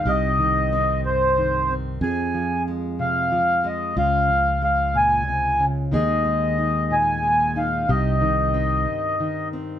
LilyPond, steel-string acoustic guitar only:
\new Staff \with { instrumentName = "Steel-string acoustic guitar" } { \clef bass \time 6/8 \key c \phrygian \tempo 4. = 61 << { g'4 c'4. c'8 | aes'4 aes4. aes8 | f'4 aes2 | <aes ees' aes'>4 ees'4. ees'8 |
g'4 c'4. c'8 | } \\ { <c ees>8 ees4 g,8 ees4 | f,8 f4 c8 f4 | des8 f4 bes,8 c8 des8 | ees8 aes4 bes,8 aes4 |
c8 ees4 g,8 ees4 | } >> }